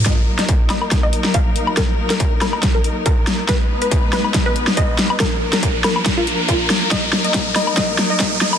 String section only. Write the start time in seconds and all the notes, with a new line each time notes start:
0.06 F#3 A#3 D#4 A#4
3.49 G#3 B3 D#4 B4
5.20 F3 A#3 D4 A#4
6.92 F#3 D#4